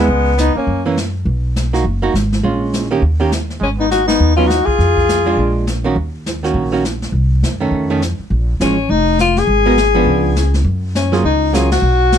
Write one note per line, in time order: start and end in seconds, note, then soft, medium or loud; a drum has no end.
0.00 0.37 G#3 medium
0.00 0.39 B3 medium
0.08 0.52 C#2 medium
0.08 brush sweep soft
0.37 0.54 B3 medium
0.37 0.55 D#4 medium
0.37 snare medium
0.37 hi-hat pedal medium
0.55 0.83 A#3 medium
0.55 0.84 C#4 medium
0.55 muted upright bass stroke soft
0.67 1.23 F#2 medium
0.67 brush sweep soft
0.86 0.96 E3 medium
0.86 0.97 A#3 medium
0.86 0.97 C#4 medium
0.97 snare medium
0.97 hi-hat pedal medium
1.25 1.82 B1 medium
1.25 brush sweep soft
1.56 snare medium
1.56 hi-hat pedal medium
1.73 1.84 A#3 medium
1.73 1.84 D#4 soft
1.73 1.85 F#4 medium
1.73 snare soft
1.84 2.12 F#1 medium
1.84 brush sweep soft
2.02 2.13 A#3 medium
2.02 2.14 D#4 medium
2.02 2.14 F#4 medium
2.14 2.42 G#1 medium
2.14 snare medium
2.14 hi-hat pedal medium
2.32 snare soft
2.43 3.00 A#1 medium
2.43 2.87 G#3 soft
2.43 2.88 C#4 soft
2.43 2.88 F4 medium
2.43 brush sweep soft
2.73 snare soft
2.73 hi-hat pedal soft
2.91 3.02 D#3 medium
2.91 3.02 A#3 medium
2.91 3.02 C#4 medium
2.91 3.02 G4 medium
3.02 3.58 D#2 medium
3.02 brush sweep soft
3.20 3.31 D#3 medium
3.20 3.31 A#3 medium
3.20 3.31 C#4 medium
3.20 3.31 G4 medium
3.32 snare medium
3.32 hi-hat pedal medium
3.50 snare soft
3.60 4.17 G#1 medium
3.60 3.68 G#3 medium
3.60 3.71 C#4 medium
3.60 brush sweep soft
3.78 3.89 B3 medium
3.78 3.91 D#4 medium
3.90 4.06 D#4 medium
3.90 4.07 F#4 medium
3.90 snare medium
3.90 hi-hat pedal medium
4.06 4.35 B3 medium
4.06 4.35 D#4 medium
4.06 snare medium
4.06 ride medium
4.20 4.64 D#2 medium
4.20 brush sweep soft
4.36 4.48 F#3 medium
4.36 4.49 B3 medium
4.36 4.48 C#4 medium
4.36 4.49 D#4 medium
4.36 4.49 F4 medium
4.47 4.67 D#4 medium
4.47 4.67 F#4 medium
4.47 snare medium
4.47 hi-hat pedal medium
4.65 5.54 F4 medium
4.65 5.55 G#4 medium
4.65 muted upright bass stroke soft
4.65 kick soft
4.79 5.35 F2 medium
4.79 brush sweep soft
4.79 snare soft
4.97 kick soft
5.09 snare medium
5.09 hi-hat pedal medium
5.26 5.65 G#3 medium
5.26 5.65 D4 medium
5.26 5.65 F4 medium
5.37 5.93 A#1 medium
5.37 brush sweep soft
5.67 snare medium
5.67 hi-hat pedal soft
5.84 5.95 D#3 medium
5.84 5.96 A#3 medium
5.84 5.96 C#4 medium
5.84 5.96 F#4 medium
5.96 6.52 D#2 medium
5.96 brush sweep soft
6.26 snare medium
6.26 hi-hat pedal medium
6.43 6.71 D#3 soft
6.43 6.71 A#3 soft
6.43 6.71 C#4 medium
6.43 6.72 F#4 medium
6.43 snare soft
6.54 7.10 A#1 medium
6.54 brush sweep soft
6.72 6.83 D#3 medium
6.72 6.83 A#3 medium
6.72 6.84 C#4 medium
6.72 6.84 F#4 medium
6.85 snare medium
6.85 hi-hat pedal medium
7.02 snare soft
7.12 7.40 C2 medium
7.12 brush sweep soft
7.43 7.70 F#2 medium
7.43 snare medium
7.43 hi-hat pedal medium
7.60 7.88 D#3 medium
7.60 7.89 A3 medium
7.60 7.89 C#4 medium
7.71 8.15 F2 medium
7.71 brush sweep soft
7.90 8.01 D#3 medium
7.90 8.01 A3 medium
7.90 8.01 C#4 medium
8.02 snare medium
8.02 hi-hat pedal medium
8.19 muted upright bass stroke soft
8.30 8.58 A#1 medium
8.30 brush sweep soft
8.60 8.88 A1 medium
8.60 8.76 F3 medium
8.60 8.77 G#3 medium
8.60 8.92 C#4 medium
8.60 8.77 C#4 medium
8.60 snare medium
8.60 hi-hat pedal soft
8.89 9.45 F1 medium
8.89 9.19 D#4 medium
8.89 brush sweep soft
9.19 9.40 F4 medium
9.19 snare medium
9.19 hi-hat pedal medium
9.36 10.55 G#4 loud
9.36 snare soft
9.47 10.04 G#1 medium
9.47 brush sweep soft
9.66 9.77 G#3 medium
9.66 9.77 B3 medium
9.66 9.77 F#4 medium
9.66 9.77 A#4 medium
9.77 snare medium
9.77 hi-hat pedal soft
9.95 10.34 F3 medium
9.95 10.34 B3 medium
9.95 10.35 D4 medium
10.05 10.62 C#2 medium
10.05 brush sweep soft
10.36 snare medium
10.36 hi-hat pedal medium
10.54 snare soft
10.64 11.21 F#2 medium
10.64 brush sweep soft
10.95 11.23 C#4 medium
10.95 snare medium
10.95 hi-hat pedal medium
11.12 11.23 F#3 medium
11.12 11.23 A#3 medium
11.12 11.23 F4 medium
11.12 11.24 G#4 medium
11.12 snare soft
11.24 11.80 C#2 medium
11.24 11.56 D#4 medium
11.24 brush sweep soft
11.53 11.69 F#3 medium
11.53 11.70 A#3 medium
11.53 11.71 C#4 medium
11.53 11.70 F4 medium
11.53 11.70 G#4 medium
11.53 snare medium
11.53 hi-hat pedal medium
11.72 12.18 F#4 loud
11.72 snare medium
11.72 ride medium
11.82 12.18 B1 medium
11.82 brush sweep soft
12.12 snare medium
12.12 hi-hat pedal medium